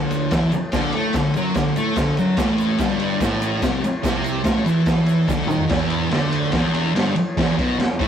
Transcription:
Already playing: picked electric bass D2, distorted electric guitar D3
0.11 ride, shaker
0.31 picked electric bass E2, distorted electric guitar E3, kick, snare, ride, shaker
0.52 muted distorted electric guitar stroke, muted picked electric bass stroke, ride, shaker
0.72 picked electric bass D2, distorted electric guitar D3, kick, snare, ride, shaker
0.92 picked electric bass A2, distorted electric guitar A3, ride
1.13 picked electric bass D2, distorted electric guitar D3, kick, snare, ride, shaker
1.34 picked electric bass F#2, distorted electric guitar F#3, ride, shaker
1.54 picked electric bass D2, distorted electric guitar D3, kick, snare, ride, shaker
1.76 picked electric bass A2, distorted electric guitar A3, ride, shaker
1.96 picked electric bass D2, distorted electric guitar D3, kick, snare, ride, shaker
2.17 picked electric bass F#2, distorted electric guitar F#3, ride, shaker
2.37 picked electric bass A1, distorted electric guitar A2, kick, snare, ride, shaker
2.58 ride, shaker
2.78 picked electric bass G1, distorted electric guitar G2, kick, snare, ride, shaker
3.00 ride
3.20 picked electric bass A1, distorted electric guitar A2, kick, snare, ride, shaker
3.42 ride, shaker
3.62 picked electric bass C2, distorted electric guitar C3, kick, snare, ride, shaker
3.83 muted picked electric bass stroke, muted distorted electric guitar stroke, ride, shaker
4.03 picked electric bass C2, distorted electric guitar C3, kick, snare, ride, shaker
4.24 ride, shaker
4.44 picked electric bass A1, distorted electric guitar A2, kick, snare, ride, shaker
4.66 picked electric bass E2, distorted electric guitar E3, ride, shaker
4.86 kick, snare, ride, shaker
5.06 ride, shaker
5.28 picked electric bass D2, distorted electric guitar D3, kick, snare, shaker
5.47 picked electric bass D#2, distorted electric guitar D#3, mid tom, shaker
5.58 floor tom
5.69 picked electric bass E1, distorted electric guitar E2, kick, snare, ride
5.90 ride
6.10 picked electric bass D2, distorted electric guitar D3, snare, ride
6.32 ride
6.52 picked electric bass E1, distorted electric guitar E2, kick, snare, ride
6.74 ride
6.95 picked electric bass G1, distorted electric guitar G2, snare, ride
7.16 muted distorted electric guitar stroke, muted picked electric bass stroke, ride
7.37 picked electric bass E1, distorted electric guitar E2, kick, snare, ride
7.57 picked electric bass B1, distorted electric guitar B2, kick, ride
7.78 picked electric bass E1, distorted electric guitar E2, snare, ride
7.99 picked electric bass A1, distorted electric guitar A2, kick, ride

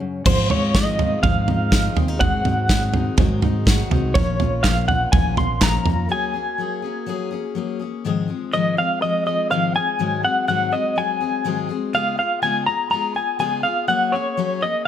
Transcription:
Already playing: steel-string acoustic guitar C#3 F#3 G#3 C#4
0.00 steel-string acoustic guitar F#2
0.25 steel-string acoustic guitar G#2 D#3 F3 G#3 C4 F4 G#4, picked electric bass G#2, french horn section C4 G#4 F5, clean electric guitar C5, kick, floor tom, crash
0.49 picked electric bass G#2, steel-string acoustic guitar F3 G#3 C4 G#4, clean electric guitar C#5, floor tom
0.74 steel-string acoustic guitar D#3 F3 G#3 C4 G#4, clean electric guitar D#5, kick, snare
0.98 steel-string acoustic guitar F3 G#3 C4 D#4 G#4, floor tom
1.23 steel-string acoustic guitar G#2 D#3 F3 G#3 C4 G#4, picked electric bass G#2, clean electric guitar F5, kick, floor tom
1.47 steel-string acoustic guitar F3 G#3 C4 D#4 G#4, floor tom
1.70 steel-string acoustic guitar D#3 F3 G#3 C4 F4 G#4, kick, snare
1.95 picked electric bass D#2, steel-string acoustic guitar F3 G#3 C4 G#4, floor tom
2.08 steel-string acoustic guitar D#4
2.19 steel-string acoustic guitar G#2 D#3 F#3 G#3 C4 F#4 G#4, picked electric bass G#2, french horn section F#4, clean electric guitar F#5, kick, floor tom
2.44 picked electric bass G#2, steel-string acoustic guitar F#3 G#3 C4 G#4, floor tom
2.68 steel-string acoustic guitar D#3 F#3 G#3 C4 G#4, kick, snare
2.92 steel-string acoustic guitar F#3 G#3 C4 D#4 G#4, floor tom
3.17 steel-string acoustic guitar G#2 D#3 F#3 G#3 C4 G#4, picked electric bass G#2, kick, floor tom
3.41 steel-string acoustic guitar F#3 G#3 C4 D#4 G#4, floor tom
3.65 steel-string acoustic guitar D#3 F#3 G#3 F#4 G#4, kick, snare
3.90 picked electric bass C2, steel-string acoustic guitar F#3 G#3 C4 D#4 G#4, floor tom
4.14 steel-string acoustic guitar A#2 F3 A#3 C#4 F4, french horn section C#4 A#4 F5, clean electric guitar C#5, kick, floor tom
4.40 picked electric bass A#1, steel-string acoustic guitar A#3 C#4 F4, floor tom
4.63 steel-string acoustic guitar F3 A#3 C#4, clean electric guitar F5, kick, snare, clap
4.67 steel-string acoustic guitar F4
4.87 steel-string acoustic guitar A#3 C#4 F4, clean electric guitar F#5, floor tom
5.12 picked electric bass A#1, steel-string acoustic guitar A#2 F3 A#3 C#4 F4, clean electric guitar G#5, kick, floor tom
5.36 steel-string acoustic guitar A#3 C#4 F4, clean electric guitar C6, floor tom
5.61 steel-string acoustic guitar F3 A#3 C#4 F4, clean electric guitar A#5, kick, snare, clap
5.84 picked electric bass F2, steel-string acoustic guitar A#3 C#4 F4, floor tom
6.09 steel-string acoustic guitar F#3 A#3 C#4 G#4, french horn section A#3 F#4 G#4, clean electric guitar G#5
6.34 steel-string acoustic guitar A#3 C#4 G#4
6.58 steel-string acoustic guitar F#3 A#3 C#4 G#4
6.82 steel-string acoustic guitar A#3 C#4 G#4
7.06 steel-string acoustic guitar F#3 A#3 C#4 G#4
7.31 steel-string acoustic guitar A#3 C#4 G#4
7.55 steel-string acoustic guitar F#3 A#3 C#4 G#4
7.79 steel-string acoustic guitar A#3 C#4 G#4
8.05 steel-string acoustic guitar G#2 D#3 F3 G#3 C4 G#4
8.28 steel-string acoustic guitar F3 G#3 C4 G#4
8.52 steel-string acoustic guitar G#2 D#3 F3 G#3 C4 G#4, clean electric guitar D#5
8.77 steel-string acoustic guitar F3 G#3 C4 G#4, clean electric guitar F5
9.02 steel-string acoustic guitar F3 G#3 C4 G#4, clean electric guitar D#5
9.26 steel-string acoustic guitar F3 G#3 C4 G#4, clean electric guitar D#5
9.50 steel-string acoustic guitar G#2 D#3 F3 G#3 C4 G#4, clean electric guitar F5
9.75 steel-string acoustic guitar F3 G#3 C4 G#4, clean electric guitar G#5
9.99 steel-string acoustic guitar G#2 D#3 F#3 G#3 C4 G#4
10.23 steel-string acoustic guitar F#3 G#3 C4 G#4, clean electric guitar F#5
10.48 steel-string acoustic guitar G#2 D#3 F#3 G#3 C4 G#4, clean electric guitar F#5
10.71 steel-string acoustic guitar F#3 G#3 C4 G#4, clean electric guitar D#5
10.96 steel-string acoustic guitar F#3 G#3 C4 G#4, clean electric guitar G#5
11.21 steel-string acoustic guitar F#3 G#3 C4 G#4
11.44 steel-string acoustic guitar G#2 D#3 F#3 G#3 C4 G#4
11.69 steel-string acoustic guitar F#3 G#3 C4 G#4
11.93 steel-string acoustic guitar C#3 G#3 B3 F4 G#4, clean electric guitar F5
12.18 steel-string acoustic guitar B3 F4 G#4, clean electric guitar F5
12.42 steel-string acoustic guitar C#3 G#3 B3 F4 G#4, clean electric guitar G#5
12.66 steel-string acoustic guitar B3 F4 G#4, clean electric guitar A#5
12.90 steel-string acoustic guitar G#3 B3 F4 G#4, clean electric guitar A#5
13.15 steel-string acoustic guitar B3 F4 G#4, clean electric guitar G#5
13.39 steel-string acoustic guitar C#3 G#3 B3 F4 G#4, clean electric guitar G#5
13.63 steel-string acoustic guitar B3 F4 G#4, clean electric guitar F5
13.88 steel-string acoustic guitar F#3 A#3 C#4 G#4, clean electric guitar F#5
14.12 steel-string acoustic guitar A#3 C#4 G#4, clean electric guitar C#5
14.37 steel-string acoustic guitar F#3 A#3 C#4 G#4
14.61 steel-string acoustic guitar A#3 C#4 G#4, clean electric guitar D#5

